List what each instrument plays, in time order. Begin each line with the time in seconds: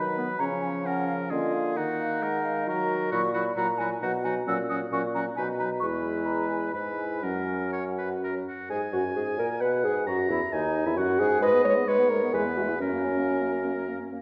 Already playing: bassoon D#3, french horn F#3, oboe B4, flute B5
0.17 clarinet B3
0.38 bassoon C#3, french horn F3, clarinet C#4, oboe C#5, flute A#5
0.62 flute G#5
0.85 clarinet C#4, oboe A#4, flute F#5
1.07 flute F5
1.30 bassoon D3, french horn A#3, clarinet F4, oboe G#4, flute D#5
1.53 flute F5
1.76 bassoon D#3, clarinet D#4, oboe F#4, flute F#5
2.00 flute F5
2.23 french horn G#3, oboe A#4, flute F#5
2.45 flute F5
2.68 french horn F#3, clarinet F#4, oboe A#4, flute A#5
3.12 bassoon A#2, french horn F#3, clarinet E4, oboe F#4, flute C#6
3.34 french horn F#3, clarinet E4, oboe F#4, flute B5
3.56 bassoon A#2, french horn F#3, clarinet E4, oboe F#4, flute A#5
3.78 french horn F#3, clarinet E4, oboe F#4, flute G#5
4.02 bassoon B2, french horn F#3, clarinet D#4, oboe F#4, flute F#5
4.24 french horn F#3, clarinet D#4, oboe F#4, flute G#5
4.47 bassoon A#2, french horn F#3, clarinet C#4, oboe F#4, flute E6
4.69 french horn F#3, clarinet C#4, oboe F#4, flute D#6
4.92 bassoon A#2, french horn F#3, clarinet C#4, oboe F#4, flute C#6
5.14 french horn F#3, clarinet C#4, oboe F#4, flute A#5
5.36 bassoon B2, french horn F#3, clarinet D#4, oboe B4, flute G#5
5.58 french horn F#3, clarinet D#4, oboe B4, flute A#5
5.80 bassoon E2, french horn G#3, clarinet E4, oboe B4, flute C#6
6.04 flute B5
6.26 flute A#5
6.50 flute G#5
6.73 bassoon G#2, french horn G#3, clarinet E4, oboe B4, flute B5
6.96 flute G#5
7.22 bassoon F#2, french horn F#3, clarinet C#4, oboe A#4, flute F#5
7.73 oboe C#5
7.98 oboe B4
8.24 oboe A#4
8.48 oboe F#4
8.69 bassoon G#2, flute G#4, clarinet G#4, french horn G#4, oboe G#5
8.92 bassoon F#2, flute F#4, clarinet F#4, french horn F#4
9.15 bassoon G#2, french horn G#4, clarinet G#4, flute G#4
9.38 bassoon A#2, french horn A#4, clarinet A#4, flute A#4
9.61 bassoon B2, clarinet B4, french horn B4, flute B4, oboe F#5
9.84 bassoon G#2, french horn G#4, clarinet G#4, flute G#4
10.07 bassoon F#2, french horn F#4, clarinet F#4, flute F#4, oboe A#5
10.30 bassoon E2, french horn E4, clarinet E4, flute E4
10.52 bassoon D#2, french horn D#4, clarinet D#4, flute D#4, oboe G#5
10.86 bassoon E2, clarinet E4, french horn E4, flute E4
10.97 bassoon F#2, clarinet F#4, french horn F#4, flute F#4, oboe F#5
11.19 bassoon G#2, french horn G#4, clarinet G#4, flute G#4
11.42 bassoon G#2, clarinet G#3, french horn B4, oboe D#5, flute D#5
11.54 clarinet B3
11.64 clarinet G#3, french horn C#5
11.76 clarinet B3, flute B4
11.87 clarinet G#3, french horn B4, oboe C#5, flute D#5
11.99 clarinet B3, flute B4
12.10 clarinet G#3, french horn A#4, flute D#5
12.22 clarinet B3, flute B4
12.33 bassoon E2, clarinet G#3, french horn G#4, oboe B4, flute E5
12.46 clarinet B3, flute G#5
12.56 clarinet G#3, french horn F#4, flute E5
12.69 clarinet B3, french horn E4, flute G#5
12.80 bassoon F#2, french horn C#4, clarinet C#4, oboe A#4, flute C#5
12.93 clarinet A#3, flute A#4
13.05 clarinet C#4, flute C#5
13.17 clarinet A#3, flute A#4
13.29 clarinet C#4, flute C#5
13.41 clarinet A#3, flute A#4
13.52 clarinet C#4, flute C#5
13.64 clarinet A#3, flute A#4
13.76 clarinet C#4, flute C#5
13.89 clarinet A#3, flute A#4
14.00 clarinet C#4, flute C#5
14.12 clarinet A#3, flute A#4